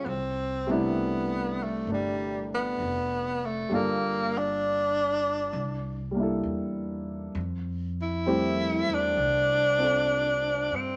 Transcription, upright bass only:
X:1
M:4/4
L:1/8
Q:"Swing" 1/4=66
K:C
V:1 name="Upright bass" clef=bass
C,,4 G,,,2 F,,,2 | G,,,4 C,,2 E,,2 | F,,3 E,, C,,3 G,, |]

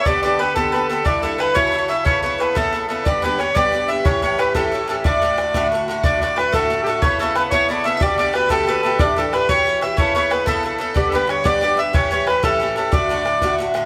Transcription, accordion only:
X:1
M:6/8
L:1/16
Q:3/8=122
K:D
V:1 name="Accordion"
d2 d2 B2 A4 A2 | d2 A2 B2 c4 e2 | c2 c2 B2 A4 A2 | d2 B2 c2 d4 e2 |
c2 c2 B2 A4 A2 | d8 z4 | d2 d2 B2 A3- A/2 G/2 A2 | c2 A2 B2 c2 d2 e2 |
d2 d2 B2 A4 A2 | d2 A2 B2 c4 e2 | c2 c2 B2 A2 A2 A2 | d3/2 A/2 B2 c2 d4 e2 |
c2 c2 B2 A4 A2 | d8 z4 |]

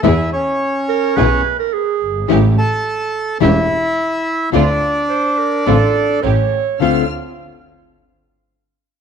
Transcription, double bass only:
X:1
M:4/4
L:1/8
Q:1/4=107
K:Dm
V:1 name="Double bass" clef=bass
E,, z3 =B,,, z2 G,,, | A,,, z3 E,,, z3 | D,, z3 A,,, z A,,, z | D,, z6 z |]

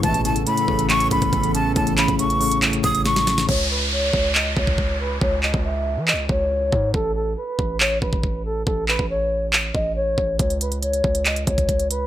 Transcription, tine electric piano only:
X:1
M:4/4
L:1/8
Q:1/4=139
K:Alyd
V:1 name="Tine electric piano" clef=bass
A,, C, A,, C, A,,3 C, | A,, C, A,, C, A,,3 C, | z8 | z8 |
z8 | z8 | z8 |]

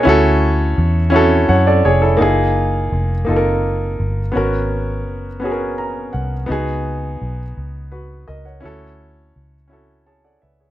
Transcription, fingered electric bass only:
X:1
M:6/8
L:1/8
Q:3/8=56
K:F#
V:1 name="Fingered electric bass" clef=bass
=D,,2 =E,,2 F,, ^E,,, | F,,,2 E,,, F,,,2 =G,,, | G,,,2 F,,,3 ^B,,, | C,,2 B,,, C,,2 C,, |
=D,,2 C,,3 C,, |]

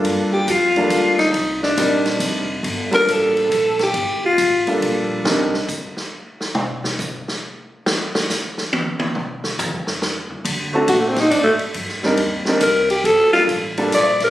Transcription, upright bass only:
X:1
M:3/4
L:1/8
Q:"Swing" 1/4=138
K:Gm
V:1 name="Upright bass" clef=bass
G,,2 F,,2 D,,2 | C,,2 B,,,2 F,,,2 | G,,,2 A,,,2 B,,,2 | G,,,2 A,,, z B,,,2 |
C,, z4 z | z6 | z6 | z6 |
D,2 B,,2 A,, z | G,,2 E,,2 C,,2 | G,,,2 A,,,2 B,,,2 |]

